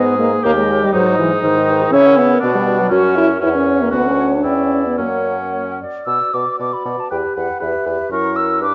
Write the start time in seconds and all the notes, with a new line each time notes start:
Already playing: G#2 B3 G#4
0.06 G#4 B4
0.19 A#3 B4 D#5
0.33 G#4 B4
0.44 D#2 A#3 G4 A#4 C#5
0.57 G#3 G4 D#5
0.70 A#4 C#5
0.83 G3 G4 D#5
0.93 G#2 F#3 D#4 B4
1.07 G#4 D#5
1.19 E3 D#4 B4
1.32 G#4 D#5
1.43 G#2 D#3 D#4 B4
1.57 G#4 D#5
1.70 D#4 B4
1.81 G#4 D#5
1.93 C#3 C#4 E4 C#5 E5
2.06 A#4 F#5
2.17 B3 C#5 E5
2.30 A#4 F#5
2.40 B2 B3 D4 F#4 D5
2.54 G3 B4 F#5
2.66 F#4 D5
2.79 F#3 B4 F#5
2.89 F#2 C#4 F#4 C#5
3.03 A#4 F#5
3.16 E4 F#4 C#5
3.28 A#4 F#5
3.40 E2 C#4 E4 C#5 F#5
3.53 C#4 A#4 E5
3.66 C#5 F#5
3.79 A#3 A#4 E5
3.91 D2 B3 F#4 B4 F#5
4.06 C#4
4.20 C#5
4.35 D4
4.44 E2 C#4 E4 D5 G5
4.86 B3
4.98 F#2 A#3 C#4 C#5 F#5
5.53 C#5
5.81 D5
6.06 B2 F#4 B4 D5 E6
6.33 B2 B4 D5 D6
6.58 B2 B4 D5 D6
6.73 B5
6.85 B2 B4 D5
7.00 A5
7.11 E2 G4 B4 G5
7.35 E2 G4 B4 F#5
7.60 E2 G4 B4 E5
7.85 E2 G4 B4
8.11 F#2 E4 A#4 C#6
8.36 E6
8.62 G2 D4 B4 D6